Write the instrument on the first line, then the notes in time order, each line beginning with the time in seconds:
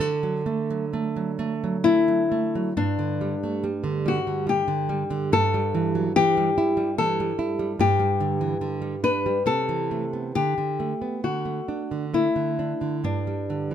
nylon-string guitar
0.00 D3 D4 F#4 A4
0.23 F#3
0.46 A3
0.70 F#3
0.93 A3
1.16 F#3
1.39 A3
1.64 F#3
1.84 A3 E4
2.08 F#3
2.32 A3
2.55 F#3
2.77 G2 D4
2.99 D3
3.21 G3
3.44 A3
3.64 G3
3.84 D3
4.06 G3 F#4
4.27 D3
4.47 G3 G4
4.68 D3
4.89 G3
5.10 D3
5.32 G2 A4
5.54 G3
5.75 E3
5.95 F#3
6.16 E3 G4
6.37 G3
6.58 E4
6.77 G3
6.98 E3 A4
7.20 G3
7.39 E4
7.59 G3
7.79 G2 G4
7.99 G3
8.20 D3
8.41 E3
8.61 D3
8.82 G3
9.04 D4 B4
9.26 G3
9.46 C3 A4
9.69 E3
9.91 A3
10.13 B3
10.35 D3 G4
10.58 D3
10.80 A3
11.02 B3
11.24 D3 F#4
11.45 A3
11.68 D4
11.91 D3
12.14 A3 E4
12.36 D3
12.59 D4
12.81 D3
13.04 G2 D4
13.27 G3
13.50 D3
13.71 E3